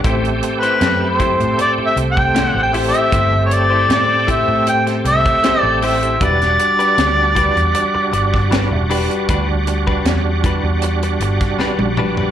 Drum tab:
HH |xxxxx-xxx-x-x-ox|x-x-x-x-xxxxx-ox|xxxxx-xxx-x-x-ox|x-x-x-x-xxxx----|
SD |----o-------o---|----o----o--o---|-o--o------oo---|----o------oo---|
T1 |----------------|----------------|----------------|-------------o--|
T2 |----------------|----------------|----------------|--------------o-|
FT |----------------|----------------|----------------|---------------o|
BD |o-----o----o----|o-----o----o----|o-----o----o----|o--o--o----o----|